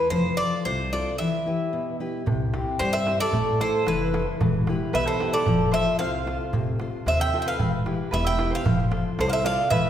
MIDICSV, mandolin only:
0, 0, Header, 1, 2, 480
1, 0, Start_track
1, 0, Tempo, 536673
1, 106, Time_signature, 2, 2, 24, 8
1, 3466, Tempo, 530504
1, 8916, End_track
2, 0, Start_track
2, 0, Title_t, "Mandolin"
2, 0, Program_c, 0, 25
2, 2504, Note_on_c, 0, 67, 74
2, 2618, Note_off_c, 0, 67, 0
2, 2626, Note_on_c, 0, 72, 81
2, 2850, Note_off_c, 0, 72, 0
2, 2870, Note_on_c, 0, 69, 77
2, 3202, Note_off_c, 0, 69, 0
2, 3226, Note_on_c, 0, 69, 72
2, 3448, Note_off_c, 0, 69, 0
2, 3467, Note_on_c, 0, 64, 55
2, 3803, Note_off_c, 0, 64, 0
2, 4422, Note_on_c, 0, 71, 72
2, 4537, Note_off_c, 0, 71, 0
2, 4541, Note_on_c, 0, 69, 64
2, 4769, Note_off_c, 0, 69, 0
2, 4780, Note_on_c, 0, 69, 74
2, 5121, Note_off_c, 0, 69, 0
2, 5131, Note_on_c, 0, 72, 81
2, 5365, Note_off_c, 0, 72, 0
2, 5382, Note_on_c, 0, 72, 77
2, 5722, Note_off_c, 0, 72, 0
2, 6359, Note_on_c, 0, 72, 69
2, 6468, Note_off_c, 0, 72, 0
2, 6472, Note_on_c, 0, 76, 78
2, 6640, Note_off_c, 0, 76, 0
2, 6650, Note_on_c, 0, 76, 48
2, 6707, Note_off_c, 0, 76, 0
2, 6710, Note_on_c, 0, 71, 63
2, 6935, Note_off_c, 0, 71, 0
2, 7298, Note_on_c, 0, 71, 74
2, 7416, Note_off_c, 0, 71, 0
2, 7419, Note_on_c, 0, 76, 83
2, 7648, Note_off_c, 0, 76, 0
2, 7656, Note_on_c, 0, 72, 63
2, 7886, Note_off_c, 0, 72, 0
2, 8278, Note_on_c, 0, 69, 72
2, 8349, Note_off_c, 0, 69, 0
2, 8352, Note_on_c, 0, 74, 54
2, 8384, Note_off_c, 0, 74, 0
2, 8395, Note_on_c, 0, 72, 75
2, 8504, Note_off_c, 0, 72, 0
2, 8511, Note_on_c, 0, 74, 87
2, 8732, Note_off_c, 0, 74, 0
2, 8748, Note_on_c, 0, 71, 78
2, 8916, Note_off_c, 0, 71, 0
2, 8916, End_track
0, 0, End_of_file